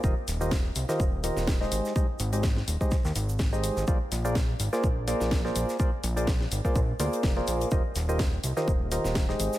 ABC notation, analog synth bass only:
X:1
M:4/4
L:1/16
Q:"Swing 16ths" 1/4=125
K:Eb
V:1 name="Analog synth bass" clef=bass
E,,, z E,,,4 C,, z E,,,3 E,,,3 A,,, z | z2 A,,,4 E,,, z2 E,, A,,,4- A,,, A,,, | B,,, z B,,,4 A,,, z B,,,3 B,,,3 B,,, z | z2 B,,,4 A,,, z B,,, z D,, z F,,, z B,,, z |
E,,, z E,,,4 C,, z E,,,3 E,,,3 A,,, z |]